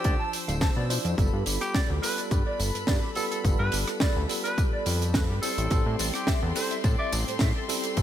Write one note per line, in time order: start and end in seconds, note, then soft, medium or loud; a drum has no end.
0.00 0.86 F3 medium
0.00 0.87 D4 medium
0.00 0.20 G4 medium
0.00 0.87 C5 medium
0.00 1.14 C5 medium
0.00 1.14 E6 medium
0.04 0.17 D2 medium
0.04 0.12 D5 loud
0.04 kick loud
0.04 closed hi-hat medium
0.04 tambourine soft
0.20 0.30 A5 loud
0.33 open hi-hat loud
0.33 tambourine medium
0.48 0.70 D1 loud
0.48 0.52 F5 medium
0.48 closed hi-hat medium
0.48 tambourine soft
0.61 0.69 A5 medium
0.61 kick loud
0.61 snare loud
0.61 closed hi-hat medium
0.61 tambourine soft
0.76 0.99 B2 medium
0.76 0.83 D5 medium
0.89 1.15 F3 medium
0.89 1.15 D4 medium
0.89 1.15 E4 medium
0.89 1.15 C5 loud
0.89 open hi-hat loud
0.89 tambourine medium
1.05 1.15 F2 medium
1.05 closed hi-hat medium
1.05 tambourine soft
1.17 1.30 G1 loud
1.17 1.99 G3 medium
1.17 2.00 B3 medium
1.17 2.00 F4 medium
1.17 8.02 A4 medium
1.17 2.00 A4 loud
1.17 5.39 B5 loud
1.17 kick loud
1.17 closed hi-hat medium
1.17 tambourine soft
1.33 1.44 G2 loud
1.46 1.58 G1 medium
1.46 1.54 G4 medium
1.46 open hi-hat loud
1.46 tambourine medium
1.61 1.78 G4 loud
1.61 cross-stick medium
1.61 closed hi-hat medium
1.61 tambourine soft
1.74 1.86 D5 loud
1.74 kick loud
1.74 snare loud
1.74 closed hi-hat medium
1.74 tambourine soft
1.90 2.00 D2 loud
1.90 1.96 G4 medium
2.02 3.13 G3 medium
2.02 3.13 B3 medium
2.02 3.13 F4 medium
2.02 3.14 A4 medium
2.02 2.21 B4 medium
2.02 cross-stick medium
2.02 open hi-hat loud
2.02 tambourine medium
2.18 2.25 D5 medium
2.18 closed hi-hat medium
2.18 tambourine soft
2.31 2.43 G2 loud
2.31 2.39 G4 loud
2.31 kick loud
2.31 closed hi-hat medium
2.31 tambourine soft
2.47 2.56 D5 loud
2.60 2.72 G1 loud
2.60 open hi-hat loud
2.60 tambourine medium
2.75 2.85 G2 soft
2.75 2.79 B4 medium
2.75 closed hi-hat medium
2.75 tambourine soft
2.87 3.00 G2 medium
2.87 2.95 D5 medium
2.87 kick loud
2.87 snare loud
2.87 closed hi-hat medium
2.87 tambourine soft
3.03 3.10 G4 medium
3.15 3.41 G3 loud
3.15 3.41 B3 medium
3.15 3.41 F4 medium
3.15 3.26 A4 medium
3.15 3.42 A4 loud
3.15 open hi-hat loud
3.15 tambourine medium
3.31 3.40 A4 medium
3.31 closed hi-hat medium
3.31 tambourine soft
3.43 3.57 G1 loud
3.43 4.26 G3 loud
3.43 4.26 B3 medium
3.43 4.26 F4 medium
3.43 4.27 A4 loud
3.43 kick loud
3.43 closed hi-hat medium
3.43 tambourine soft
3.59 3.70 G2 loud
3.59 3.76 B4 medium
3.72 3.85 G1 medium
3.72 3.80 G4 medium
3.72 open hi-hat loud
3.72 tambourine medium
3.87 cross-stick medium
3.87 closed hi-hat medium
3.87 tambourine soft
4.00 4.13 D5 loud
4.00 kick loud
4.00 snare loud
4.00 closed hi-hat medium
4.00 tambourine soft
4.16 4.27 D2 loud
4.16 4.23 G4 medium
4.28 5.39 G3 medium
4.28 5.39 B3 medium
4.28 5.40 F4 medium
4.28 5.40 A4 medium
4.28 open hi-hat loud
4.28 tambourine medium
4.44 4.61 B4 loud
4.44 4.51 D5 medium
4.44 closed hi-hat medium
4.44 tambourine soft
4.58 4.65 G4 loud
4.58 kick loud
4.58 closed hi-hat medium
4.58 tambourine soft
4.73 4.83 D5 loud
4.86 5.31 F2 medium
4.86 open hi-hat loud
4.86 tambourine medium
5.01 5.11 G4 medium
5.01 closed hi-hat medium
5.01 tambourine soft
5.14 5.19 B4 medium
5.14 kick loud
5.14 snare loud
5.14 closed hi-hat medium
5.14 tambourine soft
5.30 5.40 G2 medium
5.30 5.36 G4 loud
5.42 5.68 G3 loud
5.42 5.68 C4 medium
5.42 5.68 E4 medium
5.42 5.86 A4 medium
5.42 5.68 A4 loud
5.42 5.47 C5 medium
5.42 8.02 G5 medium
5.42 8.02 C6 medium
5.42 open hi-hat loud
5.42 tambourine medium
5.58 5.68 A1 medium
5.58 closed hi-hat medium
5.58 tambourine soft
5.70 5.83 A1 loud
5.70 6.52 G3 medium
5.70 6.53 C4 medium
5.70 6.53 E4 medium
5.70 6.53 A4 loud
5.70 kick loud
5.70 closed hi-hat medium
5.70 ride medium
5.70 tambourine soft
5.86 5.96 A2 loud
5.99 6.11 A1 medium
5.99 6.07 A4 medium
5.99 open hi-hat loud
5.99 ride medium
5.99 tambourine medium
6.14 6.31 G4 medium
6.14 cross-stick medium
6.14 closed hi-hat medium
6.14 tambourine soft
6.27 6.39 E5 loud
6.27 kick loud
6.27 snare loud
6.27 closed hi-hat medium
6.27 ride medium
6.27 tambourine soft
6.43 6.53 E2 loud
6.43 6.49 A4 medium
6.55 7.65 G3 medium
6.55 7.66 C4 medium
6.55 7.66 E4 medium
6.55 7.66 A4 medium
6.55 6.74 C5 medium
6.55 cross-stick medium
6.55 open hi-hat loud
6.55 ride medium
6.55 tambourine medium
6.71 6.77 E5 medium
6.71 closed hi-hat medium
6.71 tambourine soft
6.84 6.96 A2 loud
6.84 6.92 A4 loud
6.84 kick loud
6.84 closed hi-hat medium
6.84 ride medium
6.84 tambourine soft
6.99 7.16 D5 medium
6.99 7.09 E5 loud
7.12 7.24 A1 loud
7.12 open hi-hat loud
7.12 ride medium
7.12 tambourine medium
7.27 7.38 A2 soft
7.27 7.31 C5 medium
7.27 closed hi-hat medium
7.27 tambourine soft
7.39 7.53 A2 medium
7.39 7.48 E5 medium
7.39 kick loud
7.39 snare loud
7.39 closed hi-hat medium
7.39 ride medium
7.39 tambourine soft
7.56 7.62 A4 medium
7.68 7.94 G3 loud
7.68 7.94 C4 medium
7.68 7.94 E4 medium
7.68 7.94 A4 loud
7.68 open hi-hat loud
7.68 ride medium
7.68 tambourine medium
7.83 closed hi-hat medium
7.83 tambourine soft
7.96 8.02 A1 loud
7.96 8.02 G3 loud
7.96 8.02 C4 medium
7.96 8.02 E4 medium
7.96 8.02 A4 loud
7.96 kick loud
7.96 closed hi-hat medium
7.96 ride medium
7.96 tambourine soft